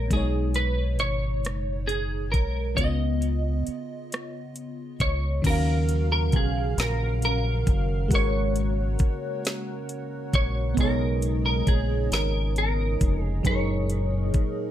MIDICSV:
0, 0, Header, 1, 7, 480
1, 0, Start_track
1, 0, Key_signature, -6, "minor"
1, 0, Tempo, 888889
1, 60, Time_signature, 6, 3, 24, 8
1, 7943, End_track
2, 0, Start_track
2, 0, Title_t, "Clean electric guitar"
2, 0, Program_c, 0, 27
2, 0, Note_on_c, 0, 70, 73
2, 70, Note_on_c, 0, 68, 78
2, 75, Note_off_c, 0, 70, 0
2, 301, Note_on_c, 0, 71, 73
2, 312, Note_off_c, 0, 68, 0
2, 537, Note_off_c, 0, 71, 0
2, 539, Note_on_c, 0, 73, 86
2, 998, Note_off_c, 0, 73, 0
2, 1012, Note_on_c, 0, 68, 75
2, 1251, Note_on_c, 0, 70, 73
2, 1264, Note_off_c, 0, 68, 0
2, 1492, Note_off_c, 0, 70, 0
2, 1494, Note_on_c, 0, 75, 93
2, 2256, Note_off_c, 0, 75, 0
2, 2256, Note_on_c, 0, 73, 93
2, 2676, Note_off_c, 0, 73, 0
2, 2707, Note_on_c, 0, 73, 87
2, 2927, Note_off_c, 0, 73, 0
2, 2951, Note_on_c, 0, 70, 100
2, 3284, Note_off_c, 0, 70, 0
2, 3306, Note_on_c, 0, 70, 90
2, 3427, Note_off_c, 0, 70, 0
2, 3435, Note_on_c, 0, 68, 86
2, 3672, Note_on_c, 0, 70, 92
2, 3675, Note_off_c, 0, 68, 0
2, 3890, Note_off_c, 0, 70, 0
2, 3915, Note_on_c, 0, 70, 96
2, 4399, Note_off_c, 0, 70, 0
2, 4401, Note_on_c, 0, 73, 96
2, 5089, Note_off_c, 0, 73, 0
2, 5591, Note_on_c, 0, 73, 95
2, 5832, Note_off_c, 0, 73, 0
2, 5835, Note_on_c, 0, 70, 104
2, 6180, Note_off_c, 0, 70, 0
2, 6186, Note_on_c, 0, 70, 88
2, 6307, Note_off_c, 0, 70, 0
2, 6309, Note_on_c, 0, 68, 86
2, 6528, Note_off_c, 0, 68, 0
2, 6552, Note_on_c, 0, 70, 97
2, 6770, Note_off_c, 0, 70, 0
2, 6794, Note_on_c, 0, 70, 90
2, 7145, Note_off_c, 0, 70, 0
2, 7145, Note_on_c, 0, 68, 90
2, 7271, Note_off_c, 0, 68, 0
2, 7273, Note_on_c, 0, 73, 93
2, 7943, Note_off_c, 0, 73, 0
2, 7943, End_track
3, 0, Start_track
3, 0, Title_t, "FM electric piano"
3, 0, Program_c, 1, 5
3, 0, Control_c, 1, 64, 127
3, 0, Note_on_c, 1, 73, 67
3, 44, Note_on_c, 1, 47, 60
3, 61, Note_on_c, 1, 56, 56
3, 68, Control_c, 1, 64, 0
3, 70, Note_off_c, 1, 73, 0
3, 73, Note_on_c, 1, 63, 55
3, 90, Note_on_c, 1, 73, 67
3, 152, Control_c, 1, 64, 127
3, 1471, Note_off_c, 1, 47, 0
3, 1479, Note_off_c, 1, 56, 0
3, 1485, Note_off_c, 1, 63, 0
3, 1486, Note_on_c, 1, 49, 59
3, 1494, Note_off_c, 1, 73, 0
3, 1503, Note_on_c, 1, 59, 56
3, 1507, Control_c, 1, 64, 0
3, 1517, Note_on_c, 1, 65, 56
3, 1531, Note_on_c, 1, 75, 64
3, 1585, Control_c, 1, 64, 127
3, 2911, Note_off_c, 1, 49, 0
3, 2920, Note_off_c, 1, 59, 0
3, 2927, Note_off_c, 1, 65, 0
3, 2927, Note_on_c, 1, 51, 67
3, 2934, Note_off_c, 1, 75, 0
3, 2941, Note_on_c, 1, 61, 61
3, 2948, Control_c, 1, 64, 0
3, 2954, Note_on_c, 1, 66, 60
3, 2970, Note_on_c, 1, 77, 75
3, 3027, Control_c, 1, 64, 127
3, 4352, Note_off_c, 1, 51, 0
3, 4359, Note_off_c, 1, 61, 0
3, 4365, Note_on_c, 1, 56, 65
3, 4366, Note_off_c, 1, 66, 0
3, 4374, Note_off_c, 1, 77, 0
3, 4378, Note_on_c, 1, 66, 60
3, 4388, Control_c, 1, 64, 0
3, 4393, Note_on_c, 1, 70, 63
3, 4407, Note_on_c, 1, 73, 77
3, 4499, Control_c, 1, 64, 127
3, 5791, Note_off_c, 1, 56, 0
3, 5798, Note_off_c, 1, 66, 0
3, 5801, Note_on_c, 1, 59, 68
3, 5805, Note_off_c, 1, 70, 0
3, 5812, Note_off_c, 1, 73, 0
3, 5816, Note_on_c, 1, 56, 61
3, 5827, Control_c, 1, 64, 0
3, 5829, Note_on_c, 1, 63, 59
3, 5845, Note_on_c, 1, 73, 76
3, 5916, Control_c, 1, 64, 127
3, 7229, Note_off_c, 1, 59, 0
3, 7236, Note_off_c, 1, 56, 0
3, 7243, Note_off_c, 1, 63, 0
3, 7251, Note_off_c, 1, 73, 0
3, 7253, Note_on_c, 1, 54, 65
3, 7267, Control_c, 1, 64, 0
3, 7268, Note_on_c, 1, 63, 61
3, 7283, Note_on_c, 1, 68, 61
3, 7297, Note_on_c, 1, 70, 72
3, 7347, Control_c, 1, 64, 127
3, 7943, Note_off_c, 1, 54, 0
3, 7943, Note_off_c, 1, 63, 0
3, 7943, Note_off_c, 1, 68, 0
3, 7943, Note_off_c, 1, 70, 0
3, 7943, End_track
4, 0, Start_track
4, 0, Title_t, "Tonewheel organ"
4, 0, Program_c, 2, 16
4, 2941, Note_on_c, 2, 54, 63
4, 2942, Note_on_c, 2, 49, 71
4, 2943, Note_on_c, 2, 77, 74
4, 4366, Note_off_c, 2, 54, 0
4, 4367, Note_off_c, 2, 49, 0
4, 4367, Note_off_c, 2, 77, 0
4, 4379, Note_on_c, 2, 58, 64
4, 4379, Note_on_c, 2, 66, 74
4, 4380, Note_on_c, 2, 49, 66
4, 5805, Note_off_c, 2, 58, 0
4, 5805, Note_off_c, 2, 66, 0
4, 5816, Note_on_c, 2, 63, 72
4, 5819, Note_on_c, 2, 56, 66
4, 7239, Note_off_c, 2, 49, 0
4, 7264, Note_on_c, 2, 46, 67
4, 7943, Note_off_c, 2, 46, 0
4, 7943, Note_off_c, 2, 56, 0
4, 7943, Note_off_c, 2, 63, 0
4, 7943, End_track
5, 0, Start_track
5, 0, Title_t, "Fingered electric bass"
5, 0, Program_c, 3, 33
5, 61, Note_on_c, 3, 35, 91
5, 538, Note_off_c, 3, 35, 0
5, 538, Note_on_c, 3, 32, 84
5, 779, Note_off_c, 3, 32, 0
5, 779, Note_on_c, 3, 30, 85
5, 1266, Note_off_c, 3, 30, 0
5, 1266, Note_on_c, 3, 35, 75
5, 1482, Note_off_c, 3, 35, 0
5, 1502, Note_on_c, 3, 37, 86
5, 1960, Note_off_c, 3, 37, 0
5, 2704, Note_on_c, 3, 37, 72
5, 2921, Note_off_c, 3, 37, 0
5, 2941, Note_on_c, 3, 39, 93
5, 3422, Note_off_c, 3, 39, 0
5, 3422, Note_on_c, 3, 35, 84
5, 3640, Note_off_c, 3, 35, 0
5, 3660, Note_on_c, 3, 34, 95
5, 4119, Note_off_c, 3, 34, 0
5, 4144, Note_on_c, 3, 30, 93
5, 4381, Note_off_c, 3, 30, 0
5, 4381, Note_on_c, 3, 32, 103
5, 4839, Note_off_c, 3, 32, 0
5, 5587, Note_on_c, 3, 34, 89
5, 5802, Note_off_c, 3, 34, 0
5, 5822, Note_on_c, 3, 35, 111
5, 6280, Note_off_c, 3, 35, 0
5, 6307, Note_on_c, 3, 34, 91
5, 6522, Note_off_c, 3, 34, 0
5, 6543, Note_on_c, 3, 32, 99
5, 7000, Note_off_c, 3, 32, 0
5, 7030, Note_on_c, 3, 29, 94
5, 7243, Note_off_c, 3, 29, 0
5, 7264, Note_on_c, 3, 30, 106
5, 7720, Note_off_c, 3, 30, 0
5, 7943, End_track
6, 0, Start_track
6, 0, Title_t, "Muted fingered electric bass strokes"
6, 1988, Note_on_c, 9, 29, 39
6, 2042, Note_off_c, 9, 29, 0
6, 7750, Note_on_c, 9, 29, 43
6, 7804, Note_off_c, 9, 29, 0
6, 7943, End_track
7, 0, Start_track
7, 0, Title_t, "Drums"
7, 57, Note_on_c, 9, 36, 92
7, 59, Note_on_c, 9, 42, 64
7, 111, Note_off_c, 9, 36, 0
7, 113, Note_off_c, 9, 42, 0
7, 294, Note_on_c, 9, 42, 49
7, 348, Note_off_c, 9, 42, 0
7, 534, Note_on_c, 9, 42, 42
7, 588, Note_off_c, 9, 42, 0
7, 782, Note_on_c, 9, 42, 60
7, 790, Note_on_c, 9, 37, 90
7, 836, Note_off_c, 9, 42, 0
7, 844, Note_off_c, 9, 37, 0
7, 1020, Note_on_c, 9, 42, 49
7, 1074, Note_off_c, 9, 42, 0
7, 1263, Note_on_c, 9, 36, 72
7, 1263, Note_on_c, 9, 42, 46
7, 1317, Note_off_c, 9, 36, 0
7, 1317, Note_off_c, 9, 42, 0
7, 1497, Note_on_c, 9, 36, 88
7, 1500, Note_on_c, 9, 42, 64
7, 1551, Note_off_c, 9, 36, 0
7, 1554, Note_off_c, 9, 42, 0
7, 1739, Note_on_c, 9, 42, 47
7, 1793, Note_off_c, 9, 42, 0
7, 1980, Note_on_c, 9, 42, 41
7, 2034, Note_off_c, 9, 42, 0
7, 2226, Note_on_c, 9, 42, 56
7, 2235, Note_on_c, 9, 37, 85
7, 2280, Note_off_c, 9, 42, 0
7, 2289, Note_off_c, 9, 37, 0
7, 2460, Note_on_c, 9, 42, 49
7, 2514, Note_off_c, 9, 42, 0
7, 2701, Note_on_c, 9, 36, 81
7, 2701, Note_on_c, 9, 42, 45
7, 2755, Note_off_c, 9, 36, 0
7, 2755, Note_off_c, 9, 42, 0
7, 2938, Note_on_c, 9, 36, 101
7, 2940, Note_on_c, 9, 49, 92
7, 2942, Note_on_c, 9, 42, 69
7, 2992, Note_off_c, 9, 36, 0
7, 2994, Note_off_c, 9, 49, 0
7, 2996, Note_off_c, 9, 42, 0
7, 3179, Note_on_c, 9, 42, 56
7, 3233, Note_off_c, 9, 42, 0
7, 3415, Note_on_c, 9, 42, 45
7, 3420, Note_on_c, 9, 36, 87
7, 3469, Note_off_c, 9, 42, 0
7, 3474, Note_off_c, 9, 36, 0
7, 3662, Note_on_c, 9, 42, 65
7, 3671, Note_on_c, 9, 38, 98
7, 3716, Note_off_c, 9, 42, 0
7, 3725, Note_off_c, 9, 38, 0
7, 3900, Note_on_c, 9, 42, 54
7, 3954, Note_off_c, 9, 42, 0
7, 4142, Note_on_c, 9, 36, 90
7, 4142, Note_on_c, 9, 42, 52
7, 4196, Note_off_c, 9, 36, 0
7, 4196, Note_off_c, 9, 42, 0
7, 4377, Note_on_c, 9, 36, 104
7, 4382, Note_on_c, 9, 42, 70
7, 4431, Note_off_c, 9, 36, 0
7, 4436, Note_off_c, 9, 42, 0
7, 4620, Note_on_c, 9, 42, 55
7, 4674, Note_off_c, 9, 42, 0
7, 4855, Note_on_c, 9, 42, 51
7, 4860, Note_on_c, 9, 36, 91
7, 4909, Note_off_c, 9, 42, 0
7, 4914, Note_off_c, 9, 36, 0
7, 5103, Note_on_c, 9, 42, 68
7, 5112, Note_on_c, 9, 38, 100
7, 5157, Note_off_c, 9, 42, 0
7, 5166, Note_off_c, 9, 38, 0
7, 5341, Note_on_c, 9, 42, 52
7, 5395, Note_off_c, 9, 42, 0
7, 5581, Note_on_c, 9, 36, 92
7, 5581, Note_on_c, 9, 42, 56
7, 5635, Note_off_c, 9, 36, 0
7, 5635, Note_off_c, 9, 42, 0
7, 5817, Note_on_c, 9, 36, 104
7, 5819, Note_on_c, 9, 42, 71
7, 5871, Note_off_c, 9, 36, 0
7, 5873, Note_off_c, 9, 42, 0
7, 6061, Note_on_c, 9, 42, 58
7, 6115, Note_off_c, 9, 42, 0
7, 6302, Note_on_c, 9, 42, 47
7, 6303, Note_on_c, 9, 36, 81
7, 6356, Note_off_c, 9, 42, 0
7, 6357, Note_off_c, 9, 36, 0
7, 6544, Note_on_c, 9, 42, 63
7, 6553, Note_on_c, 9, 38, 97
7, 6598, Note_off_c, 9, 42, 0
7, 6607, Note_off_c, 9, 38, 0
7, 6783, Note_on_c, 9, 42, 55
7, 6837, Note_off_c, 9, 42, 0
7, 7025, Note_on_c, 9, 42, 55
7, 7026, Note_on_c, 9, 36, 88
7, 7079, Note_off_c, 9, 42, 0
7, 7080, Note_off_c, 9, 36, 0
7, 7261, Note_on_c, 9, 36, 101
7, 7263, Note_on_c, 9, 42, 71
7, 7315, Note_off_c, 9, 36, 0
7, 7317, Note_off_c, 9, 42, 0
7, 7504, Note_on_c, 9, 42, 53
7, 7558, Note_off_c, 9, 42, 0
7, 7742, Note_on_c, 9, 42, 45
7, 7745, Note_on_c, 9, 36, 88
7, 7796, Note_off_c, 9, 42, 0
7, 7799, Note_off_c, 9, 36, 0
7, 7943, End_track
0, 0, End_of_file